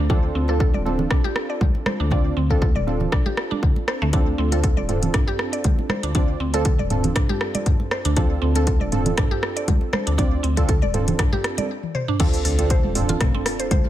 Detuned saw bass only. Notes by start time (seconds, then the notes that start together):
0.00 D2
0.35 D2
0.74 D1
1.11 C2
1.61 D2
2.00 D2
2.37 D2
2.76 D1
3.12 C2
3.63 D2
4.02 D2
4.38 D2
4.77 D1
5.14 C2
5.64 D2
6.03 D2
6.40 D2
6.79 D1
7.16 C2
7.66 D2
8.05 D2
8.42 D2
8.81 D1
9.18 C2
9.68 D2
10.07 D2
10.44 D2
10.82 D1
11.19 C2
12.45 D2
12.84 D1
13.21 C2
13.71 D2